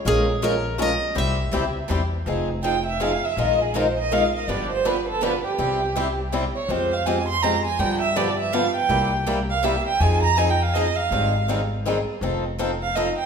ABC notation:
X:1
M:3/4
L:1/16
Q:"Swing" 1/4=163
K:Fm
V:1 name="Violin"
z12 | z12 | z4 g2 =e2 f2 e2 | e2 A2 c2 e2 f2 e2 |
=d2 c2 =B2 =A2 B2 G2- | G8 z2 d2 | c2 f2 a2 c'2 b2 a2 | g2 =e2 =d2 e2 f2 g2- |
g4 z2 f2 =e2 g2 | a2 b2 (3a2 g2 f2 e2 f2- | f4 z8 | z6 f2 e2 g2 |]
V:2 name="Steel-string acoustic guitar"
A4 B4 e4 | =e8 z4 | z12 | z12 |
z12 | z12 | z12 | z12 |
z12 | z12 | z12 | z12 |]
V:3 name="Steel-string acoustic guitar"
[F,A,DFB]2 z2 [F,A,DFB] z3 [F,A,DFB] z3 | [C,G,C=EG]2 z2 [C,G,CEG] z3 [C,G,CEG] z3 | [F,CEA]2 z2 [F,CEA] z3 [F,CEA] z3 | [E,A,EFB]2 z2 [E,A,EFB] z3 [E,A,EFB] z3 |
[=D,F,=B,=DG]2 z2 [D,F,B,DG] z3 [D,F,B,DG] z3 | [C,G,C=EG]2 z2 [C,G,CEG] z3 [C,G,CEG] z3 | [F,A,CG]2 z2 [F,A,CG] z3 [F,A,CG] z3 | [=D,F,=B,=DG]2 z2 [D,F,B,DG] z3 [D,F,B,DG] z3 |
[C,G,B,=EG]2 z2 [C,G,B,EG] z3 [C,G,B,EG] z3 | [F,CEA]2 z2 [F,CEA] z3 [F,CEA] z3 | [E,G,CEA]2 z2 [E,G,CEA] z3 [E,G,CEA] z3 | [F,CE=A]2 z2 [F,CEA] z3 [F,CEA] z3 |]
V:4 name="Steel-string acoustic guitar"
[F,A,DFB]2 z2 [F,A,DFB] z3 [F,A,DFB] z3 | [C,G,C=EG]2 z2 [C,G,CEG] z3 [C,G,CEG] z3 | [F,CEA]2 z2 [F,CEA] z3 [F,CEA] z3 | [E,A,EFB]2 z2 [E,A,EFB] z3 [E,A,EFB] z3 |
[=D,F,=B,=DG]2 z2 [D,F,B,DG] z3 [D,F,B,DG] z3 | [C,G,C=EG]2 z2 [C,G,CEG] z3 [C,G,CEG] z3 | [F,A,CG]2 z2 [F,A,CG] z3 [F,A,CG] z3 | [=D,F,=B,=DG]2 z2 [D,F,B,DG] z3 [D,F,B,DG] z3 |
[C,G,B,=EG]2 z2 [C,G,B,EG] z3 [C,G,B,EG] z3 | [F,CEA]2 z2 [F,CEA] z3 [F,CEA] z3 | [E,G,CEA]2 z2 [E,G,CEA] z3 [E,G,CEA] z3 | [F,CE=A]2 z2 [F,CEA] z3 [F,CEA] z3 |]
V:5 name="Upright bass" clef=bass
B,,,12 | C,,4 D,,4 =E,,4 | F,,,12 | B,,,12 |
G,,,12 | C,,12 | F,,12 | G,,12 |
C,,12 | F,,12 | A,,,12 | F,,,12 |]